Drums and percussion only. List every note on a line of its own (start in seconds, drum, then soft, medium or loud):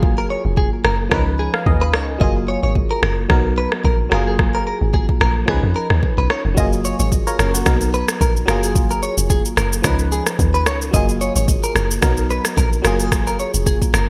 0.03 kick loud
0.57 kick loud
0.85 cross-stick loud
1.11 kick loud
1.11 cross-stick loud
1.54 cross-stick medium
1.66 kick medium
1.94 cross-stick loud
2.21 kick loud
2.75 kick medium
3.03 cross-stick loud
3.30 kick loud
3.30 cross-stick loud
3.72 cross-stick medium
3.84 kick medium
4.12 cross-stick loud
4.39 kick loud
4.39 cross-stick medium
4.94 kick medium
5.09 kick medium
5.21 cross-stick loud
5.48 kick loud
5.48 cross-stick loud
5.90 cross-stick medium
6.03 kick medium
6.30 cross-stick medium
6.57 kick loud
6.57 shaker medium
6.73 shaker soft
6.85 shaker medium
7.00 shaker medium
7.12 kick medium
7.12 shaker medium
7.27 shaker medium
7.39 cross-stick loud
7.39 shaker medium
7.55 shaker loud
7.66 kick loud
7.66 cross-stick loud
7.66 shaker medium
7.81 shaker medium
7.94 shaker soft
8.08 cross-stick medium
8.08 shaker medium
8.21 kick medium
8.21 shaker medium
8.37 shaker soft
8.48 cross-stick loud
8.48 shaker medium
8.63 shaker medium
8.75 kick loud
8.75 shaker medium
8.91 shaker soft
9.03 shaker medium
9.18 shaker medium
9.30 kick medium
9.30 shaker medium
9.45 shaker medium
9.57 cross-stick loud
9.57 shaker medium
9.73 shaker loud
9.84 kick loud
9.84 cross-stick loud
9.84 shaker medium
9.99 shaker medium
10.12 shaker soft
10.26 cross-stick medium
10.26 shaker medium
10.39 kick medium
10.39 shaker medium
10.55 shaker soft
10.66 cross-stick loud
10.66 shaker medium
10.82 shaker medium
10.94 kick loud
10.94 shaker medium
11.09 shaker soft
11.21 shaker medium
11.36 shaker medium
11.48 kick loud
11.48 shaker medium
11.64 shaker medium
11.76 cross-stick medium
11.76 shaker medium
11.91 shaker loud
12.02 kick loud
12.02 cross-stick loud
12.02 shaker medium
12.17 shaker medium
12.30 shaker medium
12.45 cross-stick medium
12.45 shaker medium
12.57 kick medium
12.57 shaker medium
12.73 shaker soft
12.85 cross-stick loud
12.85 shaker medium
13.00 shaker medium
13.12 kick loud
13.12 cross-stick loud
13.12 shaker medium
13.27 shaker soft
13.39 shaker medium
13.54 shaker medium
13.66 kick medium
13.66 shaker medium
13.82 kick medium
13.82 shaker medium
13.94 cross-stick loud
13.94 shaker medium